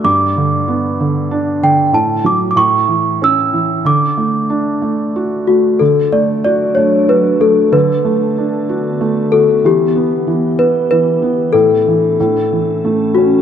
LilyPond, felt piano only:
\new Staff \with { instrumentName = "Felt piano" } { \time 3/4 \key d \major \tempo 4 = 94 g,8 d8 b8 d8 d'8 d8 | a,8 fis8 a,8 e8 cis'8 e8 | d8 a8 d'8 a8 fis'8 a8 | d8 a8 fis'8 a8 fis'8 a8 |
d8 a8 d'8 fis'8 a8 fis'8 | e8 b8 e8 b8 e8 b8 | a,8 e8 a,8 e8 a8 cis'8 | }